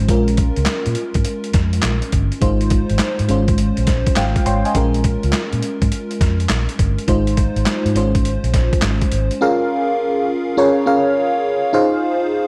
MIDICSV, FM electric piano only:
0, 0, Header, 1, 2, 480
1, 0, Start_track
1, 0, Key_signature, -5, "minor"
1, 0, Tempo, 582524
1, 71, Time_signature, 4, 2, 24, 8
1, 10276, End_track
2, 0, Start_track
2, 0, Title_t, "FM electric piano"
2, 0, Program_c, 0, 5
2, 0, Control_c, 0, 64, 127
2, 0, Note_on_c, 0, 56, 64
2, 0, Note_on_c, 0, 61, 68
2, 0, Note_on_c, 0, 72, 75
2, 67, Note_off_c, 0, 56, 0
2, 67, Note_on_c, 0, 56, 73
2, 73, Note_off_c, 0, 61, 0
2, 73, Note_on_c, 0, 61, 68
2, 81, Note_on_c, 0, 65, 68
2, 82, Control_c, 0, 64, 0
2, 86, Note_on_c, 0, 70, 77
2, 87, Note_off_c, 0, 72, 0
2, 218, Control_c, 0, 64, 127
2, 1956, Note_off_c, 0, 56, 0
2, 1959, Note_off_c, 0, 61, 0
2, 1963, Note_off_c, 0, 65, 0
2, 1965, Note_off_c, 0, 70, 0
2, 1984, Note_on_c, 0, 56, 68
2, 1990, Note_on_c, 0, 63, 62
2, 1992, Note_on_c, 0, 65, 68
2, 1996, Note_on_c, 0, 72, 84
2, 2001, Control_c, 0, 64, 0
2, 2127, Control_c, 0, 64, 127
2, 2697, Note_off_c, 0, 56, 0
2, 2706, Note_on_c, 0, 56, 68
2, 2709, Note_off_c, 0, 65, 0
2, 2710, Note_off_c, 0, 63, 0
2, 2713, Note_off_c, 0, 72, 0
2, 2713, Note_on_c, 0, 61, 64
2, 2719, Note_on_c, 0, 65, 67
2, 2723, Control_c, 0, 64, 0
2, 2727, Note_on_c, 0, 72, 78
2, 2862, Control_c, 0, 64, 127
2, 3424, Note_off_c, 0, 72, 0
2, 3434, Note_on_c, 0, 77, 67
2, 3437, Note_on_c, 0, 79, 73
2, 3440, Note_on_c, 0, 72, 52
2, 3657, Note_off_c, 0, 79, 0
2, 3661, Note_off_c, 0, 77, 0
2, 3663, Note_off_c, 0, 72, 0
2, 3674, Note_on_c, 0, 79, 71
2, 3676, Note_on_c, 0, 84, 65
2, 3680, Note_on_c, 0, 73, 55
2, 3823, Note_off_c, 0, 79, 0
2, 3826, Note_off_c, 0, 73, 0
2, 3833, Note_on_c, 0, 80, 56
2, 3838, Note_on_c, 0, 75, 48
2, 3885, Note_off_c, 0, 56, 0
2, 3888, Note_off_c, 0, 61, 0
2, 3891, Note_off_c, 0, 65, 0
2, 3897, Note_off_c, 0, 84, 0
2, 3909, Note_on_c, 0, 56, 78
2, 3913, Note_on_c, 0, 61, 73
2, 3920, Control_c, 0, 64, 0
2, 3920, Note_on_c, 0, 65, 67
2, 3928, Note_on_c, 0, 70, 83
2, 4059, Note_off_c, 0, 80, 0
2, 4061, Note_off_c, 0, 75, 0
2, 4073, Control_c, 0, 64, 127
2, 5797, Note_off_c, 0, 56, 0
2, 5799, Note_off_c, 0, 61, 0
2, 5803, Note_off_c, 0, 65, 0
2, 5806, Note_off_c, 0, 70, 0
2, 5830, Note_on_c, 0, 56, 78
2, 5833, Note_on_c, 0, 63, 72
2, 5836, Note_on_c, 0, 65, 69
2, 5841, Note_on_c, 0, 72, 84
2, 5843, Control_c, 0, 64, 0
2, 5979, Control_c, 0, 64, 127
2, 6538, Note_off_c, 0, 56, 0
2, 6548, Note_on_c, 0, 56, 68
2, 6552, Note_off_c, 0, 63, 0
2, 6553, Note_off_c, 0, 65, 0
2, 6554, Note_on_c, 0, 61, 64
2, 6556, Note_off_c, 0, 72, 0
2, 6562, Note_on_c, 0, 65, 62
2, 6563, Control_c, 0, 64, 0
2, 6567, Note_on_c, 0, 72, 78
2, 6704, Control_c, 0, 64, 127
2, 7725, Note_off_c, 0, 56, 0
2, 7728, Note_off_c, 0, 61, 0
2, 7732, Note_off_c, 0, 65, 0
2, 7735, Note_off_c, 0, 72, 0
2, 7753, Note_on_c, 0, 61, 86
2, 7757, Note_on_c, 0, 65, 84
2, 7758, Note_on_c, 0, 68, 80
2, 7759, Control_c, 0, 64, 0
2, 7760, Note_on_c, 0, 70, 86
2, 7762, Note_on_c, 0, 77, 96
2, 7893, Control_c, 0, 64, 127
2, 8481, Note_off_c, 0, 61, 0
2, 8483, Note_off_c, 0, 65, 0
2, 8483, Note_off_c, 0, 68, 0
2, 8484, Note_off_c, 0, 70, 0
2, 8485, Note_off_c, 0, 77, 0
2, 8712, Note_on_c, 0, 61, 94
2, 8713, Note_on_c, 0, 65, 82
2, 8716, Note_on_c, 0, 68, 84
2, 8718, Note_on_c, 0, 70, 81
2, 8721, Note_on_c, 0, 73, 101
2, 8911, Note_off_c, 0, 61, 0
2, 8912, Note_off_c, 0, 65, 0
2, 8913, Note_off_c, 0, 68, 0
2, 8915, Note_off_c, 0, 70, 0
2, 8916, Note_off_c, 0, 73, 0
2, 8950, Note_on_c, 0, 61, 76
2, 8953, Note_on_c, 0, 65, 70
2, 8955, Note_on_c, 0, 68, 72
2, 8957, Note_on_c, 0, 70, 71
2, 8959, Note_on_c, 0, 77, 92
2, 9516, Note_off_c, 0, 61, 0
2, 9517, Note_off_c, 0, 65, 0
2, 9518, Note_off_c, 0, 68, 0
2, 9520, Note_off_c, 0, 70, 0
2, 9520, Note_off_c, 0, 77, 0
2, 9665, Note_on_c, 0, 63, 86
2, 9668, Note_on_c, 0, 65, 84
2, 9671, Note_on_c, 0, 68, 87
2, 9675, Note_on_c, 0, 72, 82
2, 9676, Note_on_c, 0, 77, 94
2, 9682, Control_c, 0, 64, 0
2, 9809, Control_c, 0, 64, 127
2, 10276, Note_off_c, 0, 63, 0
2, 10276, Note_off_c, 0, 65, 0
2, 10276, Note_off_c, 0, 68, 0
2, 10276, Note_off_c, 0, 72, 0
2, 10276, Note_off_c, 0, 77, 0
2, 10276, End_track
0, 0, End_of_file